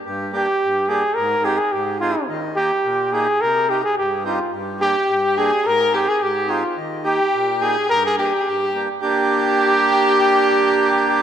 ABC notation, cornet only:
X:1
M:2/4
L:1/16
Q:1/4=107
K:Gphr
V:1 name="Cornet"
z2 G4 A2 | B2 G A G2 F2 | z2 G4 A2 | B2 G A G2 F2 |
z2 G4 A2 | B2 G A G2 F2 | z2 G4 A2 | B A G4 z2 |
G8- | G8 |]